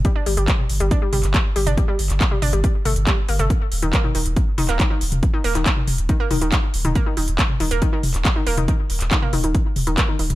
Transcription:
<<
  \new Staff \with { instrumentName = "Synth arpeggio sound" } { \clef bass \time 4/4 \key ees \lydian \tempo 4 = 139 g16 d'16 g16 g16 r8. g16 d'16 g16 g16 r8. g16 d'16 | g16 g16 r8. g16 d'16 g16 g16 r16 a16 r16 g16 r16 bes16 a16 | r8. ees16 bes16 ees16 ees16 r8. ees16 bes16 ees16 ees16 r8 | r16 ees16 bes16 ees16 ees16 r8. ees16 bes16 ees16 ees16 r8. ees16 |
bes16 ees16 ees16 r8. ees16 bes16 ees16 ees16 r8. ees16 bes16 ees16 | ees16 r8. ees16 bes16 ees16 ees16 r8. ees16 bes16 ees16 ees16 r16 | }
  \new Staff \with { instrumentName = "Sub bass" } { \clef bass \time 4/4 \key ees \lydian r8 g,,16 g,,16 r8 g,,16 g,,16 r8 g,,16 g,,16 r8 g,,16 g,,16 | r8 g,,16 g,,16 r8 g,,16 g,,16 r8 g,,16 g,,16 r8 g,,16 g,,16 | r8 ees,,16 ees,,16 r8 ees,,16 ees,,16 r8 ees,,16 ees,,16 r8 ees,,16 ees,,16 | r8 ees,,16 ees,,16 r8 ees,,16 ees,,16 r8 ees,,16 ees,,16 r8 ees,,16 ees,,16 |
r8 ees,,16 ees,,16 r8 ees,,16 ees,,16 r8 ees,,16 ees,,16 r8 ees,,16 ees,,16 | r8 ees,,16 ees,,16 r8 ees,,16 ees,,16 r8 ees,,16 ees,,16 r8 ees,,16 ees,,16 | }
  \new DrumStaff \with { instrumentName = "Drums" } \drummode { \time 4/4 <hh bd>8 hho16 hh16 <hc hh bd>16 toml16 hho16 hh16 <hh bd>8 <hho toml>16 <hc hh>16 <hc hh bd>8 hho16 <hh toml>16 | <hh bd>8 hho16 <hc hh>16 <hc hh bd>16 toml16 <hho toml>16 hh16 <hh bd>8 <hho toml>16 hh16 <hc hh bd>8 hho16 <hh toml>16 | <hh bd>8 hho16 hh16 <hc hh bd>16 toml16 hho16 hh16 <hh bd>8 <hho toml>16 <hc hh>16 <hc hh bd>8 hho16 <hh toml>16 | <hh bd>8 hho16 <hc hh>16 <hc hh bd>16 toml16 <hho toml>16 hh16 <hh bd>8 <hho toml>16 hh16 <hc hh bd>8 hho16 <hh toml>16 |
<hh bd>8 hho16 hh16 <hc hh bd>16 toml16 hho16 hh16 <hh bd>8 <hho toml>16 <hc hh>16 <hc hh bd>8 hho16 <hh toml>16 | <hh bd>8 hho16 <hc hh>16 <hc hh bd>16 toml16 <hho toml>16 hh16 <hh bd>8 <hho toml>16 hh16 <hc hh bd>8 hho16 <hh toml>16 | }
>>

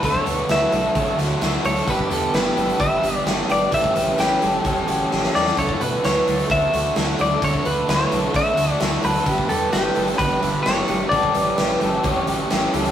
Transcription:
<<
  \new Staff \with { instrumentName = "Clean electric guitar" } { \time 4/4 \key d \major \tempo 4 = 130 cis''4 e''2~ e''8 cis''8 | b'8 a'8 b'4 e''4 r8 d''8 | e''4 g''2~ g''8 d''8 | cis''8 b'8 cis''4 e''4 r8 d''8 |
cis''8 b'8 cis''4 e''4 r8 b'8~ | b'8 a'8 g'4 b'4 cis''4 | d''2. r4 | }
  \new Staff \with { instrumentName = "Twelve-string acoustic guitar" } { \time 4/4 \key d \major a'8 b'8 b'8 a'8 cis''8 fis'8 e'8 a'8 | g'8 b'8 b'8 a'8 b'8 g'8 fis'8 b'8 | a'8 b'8 b'8 a'8 cis''8 fis'8 e'8 a'8 | a'8 b'8 b'8 a'8 cis''8 fis'8 e'8 a'8 |
a'8 b'8 b'8 a'8 cis''8 fis'8 e'8 a'8 | g'8 b'8 b'8 a'8 b'8 g'8 fis'8 b'8 | a'8 b'8 b'8 a'8 cis''8 fis'8 e'8 a'8 | }
  \new Staff \with { instrumentName = "Overdriven electric guitar" } { \time 4/4 \key d \major <d fis a d' fis'>8 <a d' fis'>8 <fis a d' fis'>8 <a d' fis'>8 <d fis a d' fis'>8 <a d' fis'>8 <fis a d' fis'>8 <a d' fis'>8 | <g, d g b d' g'>8 <g b d' g'>8 <g b d' g'>8 <g b d' g'>8 <g, d g b d' g'>8 <g b d' g'>8 <g b d' g'>8 <g b d' g'>8 | <a, e g cis' g'>8 <g cis' g'>8 <e g cis' g'>8 <g cis' g'>8 <a, e g cis' g'>8 <g cis' g'>8 <e g cis' g'>8 <g cis' g'>8 | <d a d' fis'>8 <a d' fis'>8 <d a d' fis'>8 <a d' fis'>8 <d a d' fis'>8 <a d' fis'>8 <d a d' fis'>8 <a d' fis'>8 |
<d a d' fis'>8 <a d' fis'>8 <d a d' fis'>8 <a d' fis'>8 <d a d' fis'>8 <a d' fis'>8 <d a d' fis'>8 <a d' fis'>8 | <g, d g b d' g'>8 <g b d' g'>8 <g b d' g'>8 <g b d' g'>8 <g, d g b d' g'>8 <g b d' g'>8 <g b d' g'>8 <g b d' g'>8 | <a, e g cis' g'>8 <g cis' g'>8 <e g cis' g'>8 <g cis' g'>8 <a, e g cis' g'>8 <g cis' g'>8 <e g cis' g'>8 <g cis' g'>8 | }
  \new Staff \with { instrumentName = "Overdriven electric guitar" } { \time 4/4 \key d \major <d fis a d' fis'>8 <a d' fis'>8 <fis a d' fis'>8 <a d' fis'>8 <d fis a d' fis'>8 <a d' fis'>8 <fis a d' fis'>8 <a d' fis'>8 | <g, d g b d' g'>8 <g b d' g'>8 <g b d' g'>8 <g b d' g'>8 <g, d g b d' g'>8 <g b d' g'>8 <g b d' g'>8 <g b d' g'>8 | <a, e g cis' g'>8 <g cis' g'>8 <e g cis' g'>8 <g cis' g'>8 <a, e g cis' g'>8 <g cis' g'>8 <e g cis' g'>8 <g cis' g'>8 | <d a d' fis'>8 <a d' fis'>8 <d a d' fis'>8 <a d' fis'>8 <d a d' fis'>8 <a d' fis'>8 <d a d' fis'>8 <a d' fis'>8 |
<d a d' fis'>8 <a d' fis'>8 <d a d' fis'>8 <a d' fis'>8 <d a d' fis'>8 <a d' fis'>8 <d a d' fis'>8 <a d' fis'>8 | <g, d g b d' g'>8 <g b d' g'>8 <g b d' g'>8 <g b d' g'>8 <g, d g b d' g'>8 <g b d' g'>8 <g b d' g'>8 <g b d' g'>8 | <a, e g cis' g'>8 <g cis' g'>8 <e g cis' g'>8 <g cis' g'>8 <a, e g cis' g'>8 <g cis' g'>8 <e g cis' g'>8 <g cis' g'>8 | }
  \new Staff \with { instrumentName = "Fingered electric bass" } { \clef bass \time 4/4 \key d \major d,8 d,8 d,8 b,,8 a,,8 d,8 d,8 d,8 | g,,8 e,8 g,,8 g,,8 g,,8 g,,8 g,,8 g,,8 | a,,8 a,,8 a,,8 g,,8 e,,8 a,,8 a,,8 e,8 | d,8 b,8 d,8 d,8 d,8 d,8 d,8 d,8 |
d,8 d,8 d,8 b,,8 a,,8 d,8 d,8 d,8 | g,,8 e,8 g,,8 g,,8 g,,8 g,,8 g,,8 g,,8 | a,,8 a,,8 a,,8 g,,8 e,,8 a,,8 a,,8 cis,8 | }
  \new DrumStaff \with { instrumentName = "Drums" } \drummode { \time 4/4 <hh bd>16 bd16 hh8 <hh sn>8 hh8 <hh bd>8 <hh sn>8 <hh sn>8 hh16 hh16 | <hh bd>16 bd16 hh8 <hh sn>8 hh16 hh16 <hh bd>8 hh8 <hh sn>8 hh8 | <hh bd>16 bd16 hh8 <hh sn>8 hh8 <hh bd>8 hh8 sn16 sn16 sn16 sn16 | <hh bd>16 bd16 hh8 <hh sn>8 hh16 hh16 <hh bd>8 hh8 <hh sn>8 hh8 |
<hh bd>16 bd16 hh8 <hh sn>8 hh8 <hh bd>8 <hh sn>8 <hh sn>8 hh16 hh16 | <hh bd>16 bd16 hh8 <hh sn>8 hh16 hh16 <hh bd>8 hh8 <hh sn>8 hh8 | <hh bd>16 bd16 hh8 <hh sn>8 hh8 <hh bd>8 hh8 <hh sn>8 hh16 hh16 | }
>>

